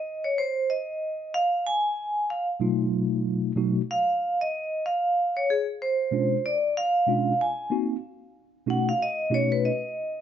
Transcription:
Already playing: D#5
0.24 C#5
0.38 C5
0.70 D#5
1.34 F5
1.67 G#5
2.30 F5
2.60 B2 F#3 A3 D#4 F4
3.55 B2 F#3 A3 D#4 F#4
3.91 F5
4.41 D#5
4.86 F5
5.37 C#5
5.50 G#4
5.82 C5
6.11 B2 G#3 C#4 D4 F4
6.46 D5
6.77 F5
7.06 B2 G#3 C#4 D4 F4
7.41 G#5
7.70 A#3 C4 D#4 F#4
8.66 B2 A3 C#4 D#4 F#4
8.70 F#5
8.89 F5
9.02 D#5
9.30 B2 A3 C#4 D#4 F#4
9.34 C#5
9.52 B4
9.65 D#5

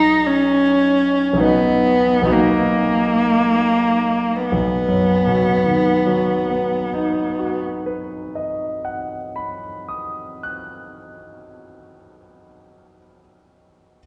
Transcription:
Already playing: B1 D#4 F#4 B4 D#5
0.26 C#4
1.33 B1 D#4
1.38 F#4 B4
1.43 B3 D#5
2.22 B1 D#4
2.26 F#4 B4
2.31 A#3 D#5
4.49 B1 B3
4.88 F#2
5.27 B2
5.66 D#3
6.06 F#3
6.49 B3
6.93 D#4
7.39 F#4
7.86 B4
8.35 D#5
8.85 F#5
9.36 B5
9.88 D#6
10.43 F#6

